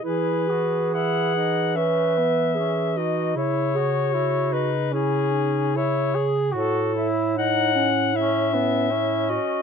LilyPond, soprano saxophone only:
\new Staff \with { instrumentName = "Soprano saxophone" } { \time 4/4 \key e \major \tempo 4 = 76 b'4 fis''4 e''4. dis''8 | cis''4. b'8 gis'4 cis''4 | a'8 r8 fis''4 e''4. dis''8 | }